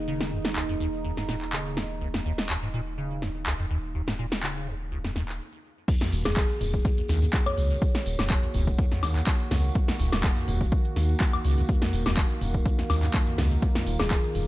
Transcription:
Already playing: D#1 D#3 A#3 D#4
0.08 C#3
0.20 snare
0.32 D#2
0.45 snare
0.56 C#2, clap
0.69 F2
0.80 D#2
1.04 D#2
1.17 G#2, snare
1.29 A#2, snare
1.42 clap
1.53 C#3, clap
1.77 D#2, snare
2.01 C#2
2.14 F2, snare
2.25 D#2
2.38 snare
2.49 D#2, clap
2.62 G#2
2.74 A#2
2.98 C#3
3.22 D#2, snare
3.46 C#2, clap
3.59 F2
3.70 D#2
3.95 D#2
4.08 G#2, snare
4.19 A#2
4.32 snare
4.43 C#3, clap
4.67 D#2
4.91 C#2
5.04 F2, snare
5.16 D#2, snare
5.29 clap
5.88 D#2 D#3 A#3 F#4, kick, closed hi-hat, crash, tambourine
6.01 F2, snare, closed hi-hat
6.12 D#1 D#2, open hi-hat, tambourine
6.25 D#1 D#2 G#4, snare, closed hi-hat, mid tom, tambourine, high woodblock
6.37 kick, clap, closed hi-hat, tambourine
6.50 closed hi-hat
6.61 D#1, mid tom, open hi-hat, tambourine
6.74 kick, closed hi-hat, tambourine
6.85 D#2, kick, closed hi-hat, tambourine
6.98 D#2, closed hi-hat
7.08 C#2 D#2, snare, open hi-hat, tambourine
7.22 F#2, closed hi-hat, tambourine
7.33 D#2, kick, clap, closed hi-hat, tambourine
7.46 F2 C#5, closed hi-hat, high woodblock
7.57 C#2 D#2, open hi-hat, tambourine
7.71 D#2, closed hi-hat, tambourine
7.82 kick, closed hi-hat, tambourine
7.95 snare, closed hi-hat
8.06 D#1, open hi-hat, tambourine
8.18 D#1, snare, closed hi-hat, mid tom, tambourine, high woodblock
8.30 D#2, kick, clap, closed hi-hat
8.43 D#2, closed hi-hat
8.54 D#1 C#2, mid tom, open hi-hat, tambourine
8.67 F#2, kick, closed hi-hat
8.79 D#2, kick, closed hi-hat, tambourine
8.92 F2, snare, closed hi-hat
9.03 D#2, snare, open hi-hat, tambourine, high woodblock
9.16 D#2, clap, closed hi-hat, tambourine
9.27 kick, clap, closed hi-hat
9.40 closed hi-hat
9.51 C#2, snare, mid tom, open hi-hat, tambourine
9.64 closed hi-hat, tambourine
9.75 D#2, kick, closed hi-hat
9.88 D#2, snare, closed hi-hat
9.99 D#1 C#2, open hi-hat, tambourine
10.12 D#1 F#2, snare, closed hi-hat, mid tom, tambourine, high woodblock
10.24 D#2, kick, clap, closed hi-hat
10.37 F2, closed hi-hat
10.48 D#1 D#2, mid tom, open hi-hat, tambourine
10.61 D#2, kick, closed hi-hat, tambourine
10.72 kick, closed hi-hat, tambourine
10.85 closed hi-hat
10.96 D#2, snare, open hi-hat, tambourine
11.09 closed hi-hat, tambourine
11.20 D#2, kick, clap, closed hi-hat
11.33 D#2, closed hi-hat, high woodblock
11.45 C#2, open hi-hat, tambourine
11.58 F#2, closed hi-hat, tambourine
11.69 D#2, kick, closed hi-hat, tambourine
11.82 F2, snare, closed hi-hat
11.93 D#1 D#2, open hi-hat, tambourine
12.06 D#1 D#2, snare, closed hi-hat, mid tom, tambourine, high woodblock
12.17 kick, clap, closed hi-hat, tambourine
12.30 closed hi-hat
12.41 D#1, mid tom, open hi-hat, tambourine
12.54 kick, closed hi-hat, tambourine
12.66 D#2, kick, closed hi-hat, tambourine
12.79 D#2, snare, closed hi-hat
12.89 C#2 D#2, snare, open hi-hat, tambourine, high woodblock
13.03 F#2, clap, closed hi-hat, tambourine
13.14 D#2, kick, clap, closed hi-hat
13.27 F2, closed hi-hat
13.38 C#2 D#2, snare, mid tom, open hi-hat, tambourine
13.51 D#2, closed hi-hat, tambourine
13.62 D#2 F4, kick, closed hi-hat, ride, tambourine
13.75 F2, snare, closed hi-hat
13.87 D#1 D#2, open hi-hat, tambourine
13.99 D#1 D#2 G#4, snare, closed hi-hat, mid tom, tambourine, high woodblock
14.11 kick, clap, closed hi-hat, ride, tambourine
14.24 closed hi-hat
14.35 D#1, mid tom, open hi-hat, tambourine

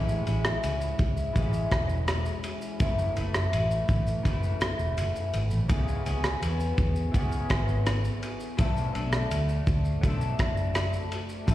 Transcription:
Already playing: A1 A2 E3 G#3 C#4 E4
0.09 shaker
0.26 A1 G#3 C#4 E4, ride, shaker
0.44 cross-stick, shaker
0.64 C#2, ride, shaker
0.81 shaker
0.99 C#2, kick, ride, shaker
1.17 shaker
1.33 A1 E3 G#3, kick, ride, shaker
1.38 C#4 E4
1.53 shaker
1.71 E1, kick, cross-stick, ride, shaker
1.89 shaker
2.08 cross-stick, ride, shaker
2.26 shaker
2.44 ride, shaker
2.62 shaker
2.80 F#1 F#2 C#3 E3 A3 E4, kick, ride, shaker
2.99 shaker
3.16 F#1 E3 A3 E4, ride, shaker
3.34 cross-stick, shaker
3.53 A1, ride, shaker
3.71 shaker
3.89 A1, kick, ride, shaker
4.07 shaker
4.23 F#1 C#3 E3, kick, ride, shaker
4.29 A3 E4
4.43 shaker
4.61 muted fingered electric bass stroke, cross-stick, ride, shaker
4.79 E1, shaker
4.98 F#1, ride, shaker
5.16 shaker
5.33 G#1, ride, shaker
5.51 A1, shaker
5.69 C#2 C#3 E3 B3 C#4 G#4, kick, ride, shaker
5.88 shaker
6.05 C#2 B3 C#4 G#4, ride, shaker
6.24 cross-stick, shaker
6.42 E2, ride, shaker
6.60 shaker
6.78 E2, kick, ride, shaker
6.96 shaker
7.12 C#2 E3 B3, kick, ride, shaker
7.17 C#4 G#4
7.32 shaker
7.50 G#1, kick, cross-stick, ride, shaker
7.68 shaker
7.86 cross-stick, ride, shaker
8.05 shaker
8.23 ride, shaker
8.40 shaker
8.57 B1 B2 F#3 A3 D4 A4, kick, ride, shaker
8.77 shaker
8.94 B1 A3 D4 A4, ride, shaker
9.12 cross-stick, shaker
9.31 D2, ride, shaker
9.49 shaker
9.67 D2, kick, ride, shaker
9.85 shaker
10.01 B1 F#3 A3, kick, ride, shaker
10.06 D4 A4
10.21 shaker
10.39 F#1, kick, cross-stick, ride, shaker
10.57 shaker
10.75 cross-stick, ride, shaker
10.93 shaker
11.12 ride, shaker
11.29 shaker
11.47 A1 A2 E3 C#4 E4 A4, kick, ride, shaker

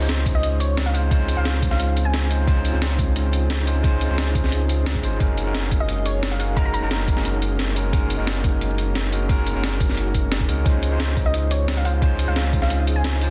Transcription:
Already playing: C#2 C4 D#4 F4 G#4 C5
0.00 G#3 C#4 D#4 F4 C5
0.09 snare, closed hi-hat
0.26 kick, closed hi-hat, shaker
0.35 D#5
0.43 closed hi-hat
0.52 shaker
0.60 C#5, closed hi-hat, shaker
0.77 snare, closed hi-hat
0.86 F5
0.93 G#3 C#4 D#4 F4 C5 F5, closed hi-hat, shaker
1.10 G#3 C#4 D#4 F4 C5, kick, closed hi-hat
1.28 closed hi-hat, shaker
1.36 C#2 G#3 C#4 D#4 F4 C5 F5
1.45 snare, closed hi-hat
1.62 kick, closed hi-hat, shaker
1.71 F5, snare
1.80 closed hi-hat
1.88 shaker
1.97 closed hi-hat, shaker
2.05 G#5
2.14 snare, closed hi-hat
2.30 G#3 C#4 D#4 F4 C5, closed hi-hat, shaker
2.47 G#3 C#4 D#4 F4 C5, kick, closed hi-hat
2.65 closed hi-hat, shaker
2.72 C#2 G#3 C#4 D#4 F4 C5
2.82 snare, closed hi-hat
2.99 kick, closed hi-hat, shaker
3.16 closed hi-hat
3.25 shaker
3.33 closed hi-hat, shaker
3.50 snare, closed hi-hat
3.66 G#3 C#4 D#4 F4 C5, closed hi-hat, shaker
3.83 G#3 C#4 D#4 F4 C5, kick, closed hi-hat
4.01 closed hi-hat, shaker
4.09 C#2 G#3 C#4 D#4 F4 C5
4.18 snare, closed hi-hat
4.35 kick, closed hi-hat, shaker
4.44 snare
4.52 closed hi-hat
4.61 shaker
4.69 closed hi-hat, shaker
4.86 snare, closed hi-hat
4.95 kick
5.02 G#1 G#3 C#4 D#4 F4 C5, closed hi-hat, shaker
5.19 F#1 G#3 A#3 C#4 D#4 F#4 A#4, kick, closed hi-hat
5.38 closed hi-hat, shaker
5.45 G#3 C#4 D#4 F#4 A#4
5.55 snare, closed hi-hat
5.71 kick, closed hi-hat, shaker
5.80 D#5
5.89 closed hi-hat
5.97 shaker
6.06 C#5, closed hi-hat, shaker
6.23 snare, closed hi-hat
6.31 F5
6.38 G#3 C#4 D#4 F#4 A#4 F5, closed hi-hat, shaker
6.56 G#3 C#4 D#4 F#4 A#4 A#5, kick, closed hi-hat
6.66 A#5
6.74 A#5, closed hi-hat, shaker
6.81 F#1 G#3 C#4 D#4 F#4 A#4 A#5
6.91 snare, closed hi-hat
7.08 kick, closed hi-hat, shaker
7.17 snare
7.25 closed hi-hat
7.34 shaker
7.42 closed hi-hat, shaker
7.59 snare, closed hi-hat
7.75 G#3 C#4 D#4 F#4 A#4, closed hi-hat, shaker
7.92 G#3 C#4 D#4 F#4 A#4, kick, closed hi-hat
8.10 closed hi-hat, shaker
8.17 F#1 G#3 C#4 D#4 F#4 A#4
8.27 snare, closed hi-hat
8.44 kick, closed hi-hat, shaker
8.61 closed hi-hat
8.70 shaker
8.78 closed hi-hat, shaker
8.95 snare, closed hi-hat
9.11 G#3 C#4 D#4 F#4 A#4, closed hi-hat, shaker
9.28 G#3 C#4 D#4 F#4 A#4, kick, closed hi-hat
9.38 shaker
9.47 closed hi-hat, shaker
9.54 F#1 G#3 C#4 D#4 F#4 A#4
9.64 snare, closed hi-hat
9.80 kick, closed hi-hat, shaker
9.89 snare
9.97 closed hi-hat
10.06 shaker
10.15 kick, closed hi-hat, shaker
10.32 snare, closed hi-hat
10.40 kick
10.47 C#2 G#3 C#4 D#4 F#4 A#4, closed hi-hat, shaker
10.64 C#2 G#3 C4 C#4 D#4 F4 G#4 C5, kick, closed hi-hat
10.83 closed hi-hat, shaker
10.90 G#3 C#4 D#4 F4 C5
11.00 snare, closed hi-hat
11.17 kick, open hi-hat, shaker
11.26 D#5
11.34 closed hi-hat
11.43 shaker
11.51 C#5, closed hi-hat, shaker
11.68 snare, closed hi-hat
11.77 F5
11.84 G#3 C#4 D#4 F4 C5 F5, open hi-hat, shaker
12.01 G#3 C#4 D#4 F4 C5, kick, closed hi-hat
12.19 closed hi-hat, shaker
12.27 C#2 G#3 C#4 D#4 F4 C5 F5
12.36 snare, closed hi-hat
12.53 kick, open hi-hat, shaker
12.62 F5, snare
12.70 closed hi-hat
12.79 shaker
12.87 closed hi-hat, shaker
12.96 G#5
13.04 snare, closed hi-hat
13.20 G#3 C#4 D#4 F4 C5, open hi-hat, shaker

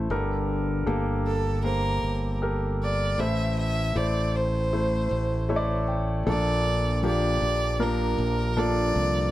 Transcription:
Already playing: A3 E4 C5
0.10 G1 G2 D3 G4 A4 A#4
0.87 G1 A#3 G4 A4
1.27 A4
1.64 A#3 G4 A#4 C5
2.03 G1
2.42 G4 A4 A#4
2.83 D5
3.18 A1 A2 E3 A3 E4 C5 E5
3.59 E5
3.95 A1 A3 E4 C5 D5
4.36 C5
4.73 A3 E4 C5
5.11 A1
5.49 A3 E4 C#5 E5
5.56 D5
5.88 G5
6.26 A#1 A#2 F3 A#3 D4 A4 D5
7.03 F3 A#3 D4 G4 D5
7.42 A#1
7.80 F3 A#3 D4 A#4
8.18 A#1
8.57 F3 A#3 D4 A4 D5
8.96 C2

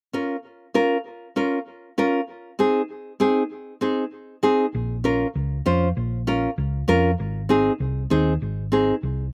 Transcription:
0.13 C#4 F4 A#4
0.74 C#4 F4 A#4
1.36 C#4 F4 A#4
1.98 C#4 F4 A#4
2.59 C4 D#4 G#4
3.20 C4 D#4 G#4
3.81 C4 D#4 G#4
4.43 C4 D#4 G#4
4.75 A#1
5.04 C#4 F4 A#4
5.35 C#2
5.66 F2 C#4 F4 C5
5.97 A#1
6.27 C#4 F4 A#4
6.58 C#2
6.88 F2 C#4 F4 A#4
7.20 G#1
7.49 C4 D#4 G#4
7.80 C2
8.10 D#2 C4 D#4 G#4
8.42 G#1
8.72 C4 D#4 G#4
9.03 C2

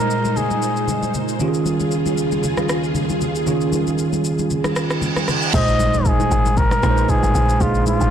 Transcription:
Already playing: A#2 G#3 D#4 A#4 C5 D#5, downlifter
0.11 shaker
0.25 high conga, shaker
0.37 G#4, low conga, shaker
0.51 high conga, shaker
0.62 shaker
0.77 shaker
0.88 high conga, low conga, shaker
1.03 high conga, shaker
1.14 low conga, shaker
1.28 shaker
1.39 D#2 C#3 D#3 C#4 F4 G4 G#4, low conga, shaker
1.48 G#4
1.54 shaker
1.66 high conga, shaker
1.80 high conga, shaker
1.91 shaker
2.06 high conga, shaker
2.17 shaker
2.32 high conga, shaker
2.43 low conga, shaker
2.57 cross-stick, high conga, shaker
2.69 cross-stick, shaker
2.84 shaker
2.95 high conga, low conga, shaker
3.10 high conga, shaker
3.21 low conga, shaker
3.35 shaker
3.46 D#3 C#4 F4 G#4, low conga, shaker
3.61 shaker
3.73 high conga, shaker
3.87 high conga, shaker
3.98 shaker
4.13 high conga, shaker
4.24 shaker
4.39 high conga, shaker
4.50 reverse cymbal, low conga, shaker
4.64 cross-stick, high conga, shaker
4.76 cross-stick, shaker
4.90 cross-stick, shaker
5.02 high conga, low conga, shaker
5.16 cross-stick, high conga, shaker
5.28 cross-stick, low conga, shaker
5.42 shaker
5.54 A#1 A#2 G#3 D#4 C5 D#5, kick, crash, impact, low conga, shaker
5.68 shaker
5.80 high conga, shaker
5.94 D#2, high conga, shaker
6.05 G#4, kick, shaker
6.20 high conga, shaker
6.31 G#1, shaker
6.46 high conga, shaker
6.57 A#4, kick, low conga, shaker
6.71 cross-stick, high conga, shaker
6.83 A#1 A#2 G#3 D#4 B4, cross-stick, shaker
6.90 C5
6.97 shaker
7.09 G#4, kick, low conga, shaker
7.23 G#1, high conga, shaker
7.35 A#1, low conga, shaker
7.49 shaker
7.60 A#1 A#2 G#3 D4 F4 G#4, kick, low conga, shaker
7.67 D#4
7.75 shaker
7.86 F4, high conga, shaker
8.01 G#1, high conga, shaker

